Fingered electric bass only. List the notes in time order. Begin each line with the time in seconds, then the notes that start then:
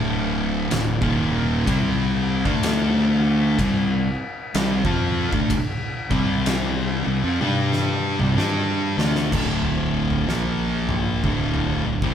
Already playing: D1
0.72 D1
1.02 D#1
1.67 C2
2.45 D2
3.59 C2
4.55 C2
4.84 F2
5.32 D2
6.11 C2
7.07 C2
7.24 F2
7.42 G2
8.19 C2
8.37 G2
8.97 D2
9.32 D1
10.28 A#1
11.24 D1
11.84 D1
12.02 C2